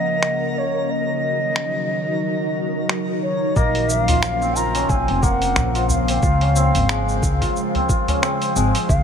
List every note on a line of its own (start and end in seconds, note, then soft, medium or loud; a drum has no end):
0.00 0.87 C#2 medium
0.00 3.52 C#3 medium
0.00 0.85 F3 medium
0.00 0.87 A#3 medium
0.00 0.85 C#4 medium
0.00 3.58 A#4 medium
0.00 0.60 D#5 loud
0.23 finger snap medium
0.58 0.92 C#5 medium
0.90 3.54 D#3 medium
0.90 3.54 F#3 medium
0.90 3.54 D#4 medium
0.90 3.54 F#4 medium
0.90 2.90 D#5 medium
1.56 finger snap medium
2.89 finger snap loud
3.23 3.58 C#5 medium
3.56 4.85 A#1 medium
3.56 9.03 C#3 medium
3.56 9.03 F3 medium
3.56 5.22 A#3 loud
3.56 6.20 A#3 medium
3.56 6.20 C#4 medium
3.56 9.03 C5 medium
3.56 3.90 D#5 loud
3.56 kick loud
3.56 cabasa soft
3.75 open hi-hat soft
3.89 4.02 E5 loud
3.89 cabasa medium
4.02 4.57 F5 loud
4.08 4.56 F4 medium
4.08 open hi-hat medium
4.08 udu loud
4.08 cabasa soft
4.23 finger snap loud
4.23 cabasa soft
4.42 4.81 C4 medium
4.42 cabasa soft
4.55 5.74 F4 medium
4.55 4.91 A#5 loud
4.55 cabasa medium
4.75 4.96 C#4 medium
4.75 open hi-hat medium
4.75 cabasa soft
4.89 5.05 A#1 medium
4.89 6.08 C4 medium
4.89 5.24 G#5 loud
4.89 kick loud
4.89 cabasa soft
5.08 5.52 F1 medium
5.08 open hi-hat soft
5.22 9.03 A#3 medium
5.22 5.84 F#5 loud
5.22 kick loud
5.22 cabasa medium
5.42 open hi-hat medium
5.42 cabasa soft
5.56 6.18 A#1 medium
5.56 finger snap loud
5.56 udu medium
5.56 cabasa soft
5.75 6.22 F4 medium
5.75 open hi-hat soft
5.75 cabasa soft
5.84 5.90 F#5 medium
5.89 7.89 F5 loud
5.89 udu medium
5.89 cabasa medium
6.08 6.47 C4 medium
6.08 open hi-hat medium
6.08 cabasa soft
6.22 6.69 C#2 medium
6.22 8.87 G#3 medium
6.22 7.41 F4 medium
6.22 9.03 G#4 medium
6.22 kick loud
6.22 cabasa soft
6.41 6.62 C#4 medium
6.41 open hi-hat soft
6.56 7.74 C4 loud
6.56 cabasa medium
6.74 7.18 G#1 medium
6.74 open hi-hat medium
6.74 udu medium
6.74 cabasa soft
6.89 8.55 G#3 loud
6.89 finger snap loud
6.89 cabasa soft
7.09 cabasa soft
7.23 7.38 C#2 medium
7.23 kick loud
7.23 cabasa medium
7.41 7.89 F4 medium
7.41 kick medium
7.41 open hi-hat medium
7.41 cabasa soft
7.56 cabasa soft
7.75 8.14 C4 medium
7.75 open hi-hat soft
7.75 udu medium
7.89 9.03 F4 medium
7.89 kick loud
7.89 cabasa medium
8.08 8.28 C#4 medium
8.08 open hi-hat medium
8.08 udu medium
8.08 cabasa soft
8.22 9.03 C4 loud
8.22 finger snap loud
8.22 cabasa soft
8.42 open hi-hat soft
8.42 cabasa soft
8.56 8.71 G#1 medium
8.56 8.94 G#3 loud
8.56 cabasa medium
8.75 open hi-hat medium
8.75 cabasa soft
8.89 9.03 C#2 loud
8.89 9.03 A#3 medium
8.89 9.03 F5 loud
8.89 kick loud
8.89 cabasa soft